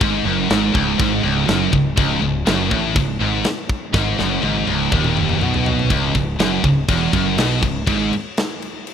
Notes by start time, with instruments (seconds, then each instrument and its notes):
0.01 fingered electric bass G#1, distorted electric guitar G#2, kick, crash
0.25 fingered electric bass F#1, distorted electric guitar F#2
0.50 fingered electric bass G#1, distorted electric guitar G#2, snare, crash
0.73 fingered electric bass C#1, distorted electric guitar C#2, kick
0.98 fingered electric bass G#1, distorted electric guitar G#2, kick, crash
1.23 fingered electric bass C#1, distorted electric guitar C#2
1.47 fingered electric bass F#1, distorted electric guitar F#2, snare, crash
1.72 fingered electric bass C#1, distorted electric guitar C#2, kick
1.97 fingered electric bass C#1, distorted electric guitar C#2, kick, crash
2.22 fingered electric bass C#1, distorted electric guitar C#2
2.46 fingered electric bass F#1, distorted electric guitar F#2, snare, crash
2.71 fingered electric bass A1, distorted electric guitar A2, kick
2.96 fingered electric bass C#1, distorted electric guitar C#2, kick, crash
3.21 fingered electric bass G#1, distorted electric guitar G#2
3.44 snare, crash
3.69 kick
3.94 fingered electric bass G#1, distorted electric guitar G#2, kick, snare
4.18 fingered electric bass F#1, distorted electric guitar F#2, snare
4.42 fingered electric bass G#1, distorted electric guitar G#2, high tom
4.67 fingered electric bass C#1, distorted electric guitar C#2, high tom
4.91 fingered electric bass D#1, distorted electric guitar D#2, kick, mid tom
5.04 mid tom
5.17 mid tom
5.29 mid tom
5.41 fingered electric bass B1, distorted electric guitar B2, mid tom
5.54 floor tom
5.66 floor tom
5.79 floor tom
5.90 fingered electric bass C#1, distorted electric guitar C#2, kick, crash
6.15 fingered electric bass C#1, distorted electric guitar C#2, kick, crash
6.39 fingered electric bass F#1, distorted electric guitar F#2, snare, crash
6.63 fingered electric bass C#1, distorted electric guitar C#2, kick, crash
6.88 fingered electric bass E1, distorted electric guitar E2, kick, crash
7.13 fingered electric bass F#1, distorted electric guitar F#2, kick, crash
7.38 fingered electric bass B1, distorted electric guitar B2, snare, crash
7.62 fingered electric bass C#1, distorted electric guitar C#2, kick, crash
7.87 fingered electric bass G#1, distorted electric guitar G#2, kick, crash
8.13 crash
8.37 snare, crash
8.62 crash
8.87 crash